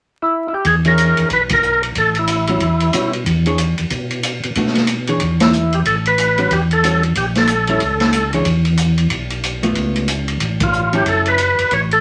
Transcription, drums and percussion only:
0.65 kick, ride
0.85 ride
0.98 hi-hat pedal, ride
1.17 ride
1.30 kick, ride
1.49 kick, ride
1.62 hi-hat pedal
1.83 ride
1.95 kick, ride
2.15 ride
2.27 hi-hat pedal, ride
2.47 ride
2.60 kick, ride
2.80 ride
2.93 hi-hat pedal, ride
3.13 ride
3.26 kick, ride
3.46 ride
3.58 hi-hat pedal, ride
3.78 ride
3.90 kick, ride
4.10 ride
4.23 hi-hat pedal, ride
4.43 ride
4.55 kick, ride
4.67 snare
4.75 snare, ride
4.87 hi-hat pedal, ride
5.07 ride
5.20 kick, ride
5.40 snare, ride
5.53 hi-hat pedal
5.73 ride
5.85 kick, ride
6.05 ride
6.18 hi-hat pedal, ride
6.38 ride
6.51 kick, ride
6.71 ride
6.84 hi-hat pedal, ride
7.03 ride
7.15 kick, ride
7.35 snare, ride
7.47 hi-hat pedal, ride
7.67 ride
7.80 kick, ride
8.00 snare, ride
8.13 hi-hat pedal, ride
8.33 ride
8.45 kick, ride
8.65 ride
8.77 hi-hat pedal, ride
8.98 ride
9.10 kick, ride
9.30 ride
9.43 hi-hat pedal, ride
9.63 ride
9.75 kick, ride
9.96 ride
10.08 hi-hat pedal, ride
10.28 ride
10.40 kick, ride
10.60 kick, ride
10.73 hi-hat pedal
10.93 ride
11.06 kick, ride
11.26 ride
11.38 hi-hat pedal, ride
11.59 ride
11.71 kick, ride
11.91 ride

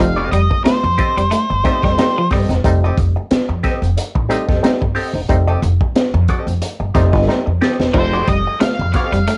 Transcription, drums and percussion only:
0.00 closed hi-hat
0.33 closed hi-hat
0.51 kick
0.65 snare, closed hi-hat
0.98 kick, closed hi-hat
1.18 closed hi-hat
1.32 closed hi-hat
1.65 kick, snare, closed hi-hat
1.83 kick, snare
1.98 snare, closed hi-hat
2.31 kick, snare, open hi-hat
2.50 snare, closed hi-hat
2.64 kick, closed hi-hat
2.98 kick, closed hi-hat
3.31 snare, closed hi-hat
3.64 kick, snare, closed hi-hat
3.83 closed hi-hat
3.98 closed hi-hat
4.15 kick
4.30 closed hi-hat
4.49 kick, snare
4.64 snare, closed hi-hat
4.82 kick
4.96 open hi-hat
5.29 kick, closed hi-hat
5.63 closed hi-hat
5.81 kick
5.96 snare, closed hi-hat
6.28 kick, closed hi-hat
6.48 closed hi-hat
6.62 closed hi-hat
6.95 kick, snare, closed hi-hat
7.13 kick, snare
7.29 snare
7.62 snare
7.80 snare
7.94 kick, crash
8.27 kick, closed hi-hat
8.61 snare, closed hi-hat
8.93 kick, snare, closed hi-hat
9.14 closed hi-hat
9.27 closed hi-hat

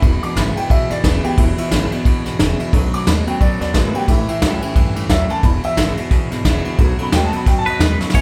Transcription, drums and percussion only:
0.02 kick, ride
0.23 ride
0.36 snare, ride
0.57 ride
0.70 kick, ride
0.90 snare, ride
1.04 kick, snare, ride
1.24 ride
1.38 kick, ride
1.58 ride
1.71 snare, ride
1.92 ride
2.05 kick, ride
2.25 snare, ride
2.39 snare, ride
2.60 ride
2.73 kick, ride
2.93 ride
3.07 snare, ride
3.27 ride
3.41 kick, ride
3.61 snare, ride
3.74 kick, snare, ride
3.94 ride
4.08 kick, ride
4.28 ride
4.42 snare, ride
4.62 ride
4.76 kick, ride
4.96 ride
5.09 kick, snare, ride
5.30 ride
5.43 kick, ride
5.63 ride
5.77 snare, ride
5.97 ride
6.11 kick, snare, ride
6.31 snare, ride
6.45 kick, snare, ride
6.65 ride
6.78 kick, ride
6.99 ride
7.12 snare, ride
7.33 ride
7.46 kick, snare, ride
7.66 ride
7.80 snare, ride
8.01 snare
8.10 snare
8.14 kick, crash

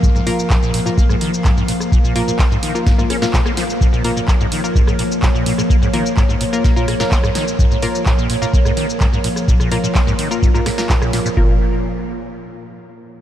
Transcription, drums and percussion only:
0.03 kick, shaker
0.16 shaker
0.27 open hi-hat
0.39 shaker
0.50 kick, clap, shaker
0.63 shaker
0.74 open hi-hat
0.87 shaker
0.97 kick, shaker
1.09 cross-stick, shaker
1.21 open hi-hat
1.34 shaker
1.45 kick, clap, shaker
1.57 shaker
1.68 open hi-hat
1.80 cross-stick, shaker
1.92 kick, shaker
2.05 shaker
2.16 open hi-hat
2.28 shaker
2.39 kick, clap, shaker
2.52 shaker
2.63 open hi-hat
2.75 shaker
2.86 kick, snare, shaker
2.99 shaker
3.10 cross-stick, open hi-hat
3.22 snare, shaker
3.33 kick, clap, shaker
3.46 cross-stick, shaker
3.57 snare, open hi-hat
3.70 shaker
3.81 kick, shaker
3.94 shaker
4.04 open hi-hat
4.17 shaker
4.28 kick, clap, shaker
4.41 shaker
4.52 open hi-hat
4.64 shaker
4.75 kick, shaker
4.87 cross-stick, shaker
4.99 open hi-hat
5.12 shaker
5.22 kick, clap, shaker
5.35 shaker
5.46 open hi-hat
5.58 cross-stick, shaker
5.70 kick, shaker
5.83 shaker
5.94 open hi-hat
6.06 shaker
6.17 kick, clap, shaker
6.30 shaker
6.41 open hi-hat
6.53 shaker
6.64 kick, snare, shaker
6.77 shaker
6.88 cross-stick, open hi-hat
7.00 snare, shaker
7.11 kick, clap, shaker
7.24 cross-stick, shaker
7.35 snare, open hi-hat
7.48 shaker
7.59 kick, shaker
7.72 shaker
7.82 open hi-hat
7.95 shaker
8.06 kick, clap, shaker
8.19 shaker
8.30 open hi-hat
8.42 shaker
8.53 kick, shaker
8.65 cross-stick, shaker
8.77 open hi-hat
8.90 shaker
9.00 kick, clap, shaker
9.13 shaker
9.24 open hi-hat
9.36 cross-stick, shaker
9.48 kick, shaker
9.60 cross-stick, shaker
9.71 open hi-hat
9.84 shaker
9.95 kick, clap, shaker
10.08 shaker
10.19 open hi-hat
10.31 shaker
10.42 kick, shaker
10.55 shaker
10.66 cross-stick, snare, open hi-hat
10.78 snare, shaker
10.89 kick, clap, shaker
11.02 cross-stick, shaker
11.13 snare, open hi-hat
11.26 shaker
11.37 kick

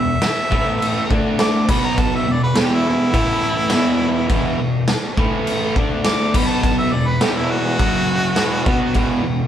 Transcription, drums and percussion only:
0.22 snare, crash
0.52 kick
0.82 crash
1.11 kick
1.39 snare, crash
1.69 kick, crash
1.98 kick, crash
2.56 snare, crash
3.14 kick, crash
3.70 snare, crash
4.29 kick, crash
4.88 snare, crash
5.17 kick
5.47 crash
5.76 kick
6.05 snare, crash
6.34 kick, crash
6.63 kick, crash
7.21 snare, crash
7.79 kick, crash
8.36 snare, crash
8.66 kick
8.94 kick, crash

